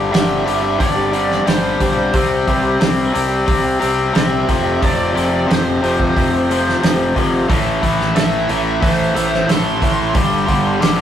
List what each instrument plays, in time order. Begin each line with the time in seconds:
Already playing: overdriven electric guitar G2 D3 G3, clean electric guitar G2 D3 G3 C4 D4 G4
0.11 picked electric bass G1, overdriven electric guitar G2 D3 G3, clean electric guitar G2 D3 G3 C4 D4 G4, lead electric guitar E5, snare, open hi-hat
0.45 picked electric bass G1, overdriven electric guitar G2 D3 G3, clean electric guitar G3 C4 D4 G4, open hi-hat
0.63 clean electric guitar G3 C4 D4 G4
0.78 picked electric bass G1, overdriven electric guitar G2 D3 G3, lead electric guitar D5, kick, open hi-hat
0.95 clean electric guitar G3 C4 D4 G4
1.12 overdriven electric guitar G2 D3 G3, clean electric guitar G3 C4 D4 G4, open hi-hat
1.32 snare
1.45 picked electric bass G1, clean electric guitar G2 D3 G3 C4 D4 G4, overdriven electric guitar G2 D3 G3, lead electric guitar C5, snare, open hi-hat
1.62 clean electric guitar G3 C4 D4 G4
1.79 picked electric bass B1, overdriven electric guitar G2 D3 G3, clean electric guitar G3 C4 D4 G4, kick, open hi-hat
1.96 clean electric guitar G3 C4 D4 G4
2.13 picked electric bass C2, clean electric guitar C3 E3 G3 C4 G4, overdriven electric guitar C3 G3 C4, kick, open hi-hat
2.47 picked electric bass C2, overdriven electric guitar C3 G3 C4, clean electric guitar E3 G3 C4 G4, kick, open hi-hat
2.63 clean electric guitar G3 C4 G4
2.80 picked electric bass C2, clean electric guitar C3 E3 G3 C4 G4, overdriven electric guitar C3 G3 C4, snare, open hi-hat
3.12 picked electric bass C2, overdriven electric guitar C3 G3 C4, clean electric guitar E3 G3 C4 G4, open hi-hat
3.28 clean electric guitar G3 C4 G4
3.46 overdriven electric guitar C3 G3 C4, kick, open hi-hat
3.62 clean electric guitar G3 C4 G4
3.79 picked electric bass C2, overdriven electric guitar C3 G3 C4, clean electric guitar E3 G3 C4 G4, open hi-hat
4.12 clean electric guitar C3 E3 G3 C4 G4, overdriven electric guitar C3 G3 C4, open hi-hat
4.16 picked electric bass C2, lead electric guitar E5, snare
4.28 clean electric guitar G3 C4 G4
4.44 overdriven electric guitar F2, clean electric guitar F3 A3 C4 G4
4.49 picked electric bass F1, overdriven electric guitar C3 F3, kick, open hi-hat
4.62 clean electric guitar A3 C4 G4
4.79 overdriven electric guitar F2 C3 F3, clean electric guitar F3 A3 C4 G4, kick
4.83 picked electric bass F1, lead electric guitar D5, open hi-hat
5.13 picked electric bass F1, overdriven electric guitar F2 C3 F3, clean electric guitar F3 A3 C4 G4
5.17 open hi-hat
5.29 clean electric guitar A3 C4 G4
5.46 picked electric bass F1, overdriven electric guitar F2 C3 F3, clean electric guitar F3 A3 C4 G4
5.51 lead electric guitar C5, snare, open hi-hat
5.79 overdriven electric guitar F2 C3, clean electric guitar F3 A3 C4 G4
5.83 picked electric bass F1, overdriven electric guitar F3, open hi-hat
5.97 clean electric guitar A3 C4 G4, kick
6.16 picked electric bass F1, overdriven electric guitar F2 C3 F3, kick, open hi-hat
6.30 clean electric guitar A3 C4 G4
6.47 overdriven electric guitar F2 C3, clean electric guitar F3 A3 C4 G4
6.51 overdriven electric guitar F3, open hi-hat
6.69 snare
6.80 picked electric bass F1, overdriven electric guitar F2 C3 F3, clean electric guitar F3 A3 C4 G4, open hi-hat
6.84 snare
6.97 clean electric guitar A3 C4 G4
7.13 picked electric bass G#1, overdriven electric guitar F2 C3 F3, clean electric guitar F3 A3 C4 G4, kick, open hi-hat
7.30 clean electric guitar A3 C4 G4
7.48 picked electric bass A1, overdriven electric guitar A2 E3 A3, kick, open hi-hat
7.82 picked electric bass A1, overdriven electric guitar A2 E3 A3, kick, open hi-hat
8.01 snare
8.15 picked electric bass A1, overdriven electric guitar A2 E3 A3, lead electric guitar E5, snare, open hi-hat
8.49 picked electric bass A1, overdriven electric guitar A2 E3 A3, open hi-hat
8.81 picked electric bass A1, overdriven electric guitar A2 E3 A3, lead electric guitar C5, kick, open hi-hat
9.14 picked electric bass A1, overdriven electric guitar A2 E3 A3, open hi-hat
9.34 snare
9.47 picked electric bass A1, overdriven electric guitar A2 E3 A3, lead electric guitar C6, snare, open hi-hat
9.81 picked electric bass A1, overdriven electric guitar A2 E3 A3, kick, open hi-hat
10.14 picked electric bass G1, overdriven electric guitar G2 D3 G3, kick, open hi-hat
10.47 picked electric bass G1, overdriven electric guitar G2 D3 G3, kick, open hi-hat
10.80 picked electric bass G1, overdriven electric guitar G2 D3 G3, snare, open hi-hat